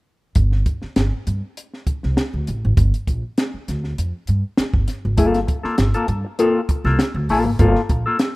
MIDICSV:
0, 0, Header, 1, 6, 480
1, 0, Start_track
1, 0, Key_signature, -2, "minor"
1, 0, Tempo, 602410
1, 285, Time_signature, 4, 2, 24, 8
1, 6660, End_track
2, 0, Start_track
2, 0, Title_t, "Clean electric guitar"
2, 0, Program_c, 0, 27
2, 4122, Note_on_c, 0, 58, 73
2, 4128, Note_on_c, 0, 65, 75
2, 4136, Note_on_c, 0, 69, 78
2, 4289, Note_off_c, 0, 58, 0
2, 4292, Note_off_c, 0, 65, 0
2, 4297, Note_off_c, 0, 69, 0
2, 4490, Note_on_c, 0, 69, 56
2, 4500, Note_on_c, 0, 65, 51
2, 4502, Note_on_c, 0, 58, 52
2, 4596, Note_off_c, 0, 58, 0
2, 4600, Note_off_c, 0, 65, 0
2, 4610, Note_off_c, 0, 69, 0
2, 4737, Note_on_c, 0, 69, 68
2, 4743, Note_on_c, 0, 65, 63
2, 4753, Note_on_c, 0, 58, 58
2, 4837, Note_off_c, 0, 58, 0
2, 4844, Note_off_c, 0, 65, 0
2, 4848, Note_off_c, 0, 69, 0
2, 5090, Note_on_c, 0, 58, 70
2, 5096, Note_on_c, 0, 65, 93
2, 5098, Note_on_c, 0, 69, 91
2, 5254, Note_off_c, 0, 58, 0
2, 5257, Note_off_c, 0, 65, 0
2, 5258, Note_off_c, 0, 69, 0
2, 5457, Note_on_c, 0, 69, 57
2, 5466, Note_on_c, 0, 65, 53
2, 5474, Note_on_c, 0, 58, 48
2, 5575, Note_off_c, 0, 69, 0
2, 5579, Note_off_c, 0, 65, 0
2, 5583, Note_off_c, 0, 58, 0
2, 5817, Note_on_c, 0, 58, 80
2, 5824, Note_on_c, 0, 65, 72
2, 5830, Note_on_c, 0, 69, 82
2, 5935, Note_off_c, 0, 69, 0
2, 5946, Note_off_c, 0, 65, 0
2, 5977, Note_off_c, 0, 58, 0
2, 6050, Note_on_c, 0, 58, 77
2, 6055, Note_on_c, 0, 65, 89
2, 6067, Note_on_c, 0, 69, 86
2, 6214, Note_off_c, 0, 58, 0
2, 6217, Note_off_c, 0, 65, 0
2, 6222, Note_off_c, 0, 69, 0
2, 6421, Note_on_c, 0, 69, 56
2, 6429, Note_on_c, 0, 65, 54
2, 6435, Note_on_c, 0, 58, 45
2, 6521, Note_off_c, 0, 58, 0
2, 6525, Note_off_c, 0, 65, 0
2, 6532, Note_off_c, 0, 69, 0
2, 6660, End_track
3, 0, Start_track
3, 0, Title_t, "Upright bass"
3, 0, Program_c, 1, 32
3, 285, Note_on_c, 1, 31, 89
3, 489, Note_off_c, 1, 31, 0
3, 768, Note_on_c, 1, 31, 75
3, 875, Note_off_c, 1, 31, 0
3, 1012, Note_on_c, 1, 43, 82
3, 1117, Note_off_c, 1, 43, 0
3, 1625, Note_on_c, 1, 36, 81
3, 1715, Note_off_c, 1, 36, 0
3, 1861, Note_on_c, 1, 38, 79
3, 1953, Note_off_c, 1, 38, 0
3, 1979, Note_on_c, 1, 33, 81
3, 2081, Note_off_c, 1, 33, 0
3, 2109, Note_on_c, 1, 32, 89
3, 2197, Note_off_c, 1, 32, 0
3, 2210, Note_on_c, 1, 31, 87
3, 2316, Note_off_c, 1, 31, 0
3, 2453, Note_on_c, 1, 34, 74
3, 2557, Note_off_c, 1, 34, 0
3, 2936, Note_on_c, 1, 38, 84
3, 3135, Note_off_c, 1, 38, 0
3, 3173, Note_on_c, 1, 41, 71
3, 3277, Note_off_c, 1, 41, 0
3, 3414, Note_on_c, 1, 43, 84
3, 3518, Note_off_c, 1, 43, 0
3, 3773, Note_on_c, 1, 31, 77
3, 3869, Note_off_c, 1, 31, 0
3, 4023, Note_on_c, 1, 32, 84
3, 4129, Note_off_c, 1, 32, 0
3, 4129, Note_on_c, 1, 31, 96
3, 4331, Note_off_c, 1, 31, 0
3, 4612, Note_on_c, 1, 31, 88
3, 4717, Note_off_c, 1, 31, 0
3, 4845, Note_on_c, 1, 43, 93
3, 4953, Note_off_c, 1, 43, 0
3, 5454, Note_on_c, 1, 36, 90
3, 5549, Note_off_c, 1, 36, 0
3, 5692, Note_on_c, 1, 38, 84
3, 5789, Note_off_c, 1, 38, 0
3, 5809, Note_on_c, 1, 33, 81
3, 5916, Note_off_c, 1, 33, 0
3, 5933, Note_on_c, 1, 32, 82
3, 6029, Note_off_c, 1, 32, 0
3, 6053, Note_on_c, 1, 31, 97
3, 6158, Note_off_c, 1, 31, 0
3, 6291, Note_on_c, 1, 34, 81
3, 6397, Note_off_c, 1, 34, 0
3, 6660, End_track
4, 0, Start_track
4, 0, Title_t, "Muted clean electric guitar strokes"
4, 4362, Note_on_c, 9, 29, 35
4, 4441, Note_off_c, 9, 29, 0
4, 4620, Note_on_c, 9, 29, 40
4, 4700, Note_off_c, 9, 29, 0
4, 4857, Note_on_c, 9, 29, 47
4, 4937, Note_off_c, 9, 29, 0
4, 4977, Note_on_c, 9, 29, 39
4, 5057, Note_off_c, 9, 29, 0
4, 5336, Note_on_c, 9, 29, 43
4, 5416, Note_off_c, 9, 29, 0
4, 5705, Note_on_c, 9, 29, 43
4, 5785, Note_off_c, 9, 29, 0
4, 5944, Note_on_c, 9, 29, 51
4, 6024, Note_off_c, 9, 29, 0
4, 6300, Note_on_c, 9, 29, 50
4, 6380, Note_off_c, 9, 29, 0
4, 6660, End_track
5, 0, Start_track
5, 0, Title_t, "Muted upright bass strokes"
5, 659, Note_on_c, 9, 29, 44
5, 739, Note_off_c, 9, 29, 0
5, 1490, Note_on_c, 9, 29, 41
5, 1570, Note_off_c, 9, 29, 0
5, 2822, Note_on_c, 9, 29, 43
5, 2901, Note_off_c, 9, 29, 0
5, 3653, Note_on_c, 9, 29, 41
5, 3733, Note_off_c, 9, 29, 0
5, 4494, Note_on_c, 9, 29, 44
5, 4574, Note_off_c, 9, 29, 0
5, 5329, Note_on_c, 9, 29, 40
5, 5409, Note_off_c, 9, 29, 0
5, 6660, End_track
6, 0, Start_track
6, 0, Title_t, "Drums"
6, 280, Note_on_c, 9, 42, 77
6, 284, Note_on_c, 9, 36, 104
6, 360, Note_off_c, 9, 42, 0
6, 364, Note_off_c, 9, 36, 0
6, 413, Note_on_c, 9, 38, 25
6, 493, Note_off_c, 9, 38, 0
6, 525, Note_on_c, 9, 42, 73
6, 526, Note_on_c, 9, 36, 77
6, 605, Note_off_c, 9, 42, 0
6, 606, Note_off_c, 9, 36, 0
6, 651, Note_on_c, 9, 38, 31
6, 731, Note_off_c, 9, 38, 0
6, 765, Note_on_c, 9, 42, 79
6, 767, Note_on_c, 9, 38, 95
6, 845, Note_off_c, 9, 42, 0
6, 847, Note_off_c, 9, 38, 0
6, 1011, Note_on_c, 9, 42, 67
6, 1090, Note_off_c, 9, 42, 0
6, 1253, Note_on_c, 9, 42, 80
6, 1332, Note_off_c, 9, 42, 0
6, 1383, Note_on_c, 9, 38, 35
6, 1462, Note_off_c, 9, 38, 0
6, 1487, Note_on_c, 9, 36, 79
6, 1488, Note_on_c, 9, 42, 64
6, 1567, Note_off_c, 9, 36, 0
6, 1568, Note_off_c, 9, 42, 0
6, 1619, Note_on_c, 9, 38, 31
6, 1699, Note_off_c, 9, 38, 0
6, 1729, Note_on_c, 9, 38, 90
6, 1735, Note_on_c, 9, 42, 75
6, 1809, Note_off_c, 9, 38, 0
6, 1815, Note_off_c, 9, 42, 0
6, 1971, Note_on_c, 9, 42, 73
6, 2050, Note_off_c, 9, 42, 0
6, 2208, Note_on_c, 9, 36, 116
6, 2210, Note_on_c, 9, 42, 79
6, 2288, Note_off_c, 9, 36, 0
6, 2290, Note_off_c, 9, 42, 0
6, 2342, Note_on_c, 9, 42, 45
6, 2421, Note_off_c, 9, 42, 0
6, 2450, Note_on_c, 9, 36, 74
6, 2451, Note_on_c, 9, 42, 70
6, 2529, Note_off_c, 9, 36, 0
6, 2531, Note_off_c, 9, 42, 0
6, 2690, Note_on_c, 9, 42, 89
6, 2692, Note_on_c, 9, 38, 93
6, 2770, Note_off_c, 9, 42, 0
6, 2772, Note_off_c, 9, 38, 0
6, 2934, Note_on_c, 9, 42, 62
6, 2939, Note_on_c, 9, 38, 30
6, 3014, Note_off_c, 9, 42, 0
6, 3019, Note_off_c, 9, 38, 0
6, 3059, Note_on_c, 9, 38, 30
6, 3138, Note_off_c, 9, 38, 0
6, 3174, Note_on_c, 9, 42, 93
6, 3254, Note_off_c, 9, 42, 0
6, 3405, Note_on_c, 9, 42, 62
6, 3485, Note_off_c, 9, 42, 0
6, 3645, Note_on_c, 9, 38, 105
6, 3651, Note_on_c, 9, 42, 78
6, 3725, Note_off_c, 9, 38, 0
6, 3730, Note_off_c, 9, 42, 0
6, 3773, Note_on_c, 9, 36, 80
6, 3853, Note_off_c, 9, 36, 0
6, 3886, Note_on_c, 9, 42, 82
6, 3889, Note_on_c, 9, 38, 26
6, 3966, Note_off_c, 9, 42, 0
6, 3968, Note_off_c, 9, 38, 0
6, 4124, Note_on_c, 9, 42, 89
6, 4127, Note_on_c, 9, 36, 109
6, 4204, Note_off_c, 9, 42, 0
6, 4207, Note_off_c, 9, 36, 0
6, 4258, Note_on_c, 9, 42, 43
6, 4259, Note_on_c, 9, 38, 27
6, 4338, Note_off_c, 9, 38, 0
6, 4338, Note_off_c, 9, 42, 0
6, 4369, Note_on_c, 9, 42, 73
6, 4371, Note_on_c, 9, 36, 79
6, 4449, Note_off_c, 9, 42, 0
6, 4451, Note_off_c, 9, 36, 0
6, 4496, Note_on_c, 9, 38, 32
6, 4576, Note_off_c, 9, 38, 0
6, 4605, Note_on_c, 9, 42, 92
6, 4607, Note_on_c, 9, 38, 96
6, 4684, Note_off_c, 9, 42, 0
6, 4686, Note_off_c, 9, 38, 0
6, 4734, Note_on_c, 9, 42, 48
6, 4813, Note_off_c, 9, 42, 0
6, 4846, Note_on_c, 9, 42, 70
6, 4925, Note_off_c, 9, 42, 0
6, 5090, Note_on_c, 9, 42, 91
6, 5170, Note_off_c, 9, 42, 0
6, 5330, Note_on_c, 9, 36, 85
6, 5330, Note_on_c, 9, 42, 65
6, 5409, Note_off_c, 9, 36, 0
6, 5409, Note_off_c, 9, 42, 0
6, 5463, Note_on_c, 9, 38, 32
6, 5543, Note_off_c, 9, 38, 0
6, 5568, Note_on_c, 9, 38, 94
6, 5574, Note_on_c, 9, 42, 82
6, 5648, Note_off_c, 9, 38, 0
6, 5654, Note_off_c, 9, 42, 0
6, 5812, Note_on_c, 9, 46, 83
6, 5891, Note_off_c, 9, 46, 0
6, 6049, Note_on_c, 9, 42, 85
6, 6051, Note_on_c, 9, 36, 104
6, 6129, Note_off_c, 9, 42, 0
6, 6130, Note_off_c, 9, 36, 0
6, 6178, Note_on_c, 9, 38, 30
6, 6258, Note_off_c, 9, 38, 0
6, 6290, Note_on_c, 9, 42, 75
6, 6291, Note_on_c, 9, 36, 83
6, 6370, Note_off_c, 9, 42, 0
6, 6371, Note_off_c, 9, 36, 0
6, 6528, Note_on_c, 9, 42, 91
6, 6530, Note_on_c, 9, 38, 96
6, 6608, Note_off_c, 9, 42, 0
6, 6610, Note_off_c, 9, 38, 0
6, 6660, End_track
0, 0, End_of_file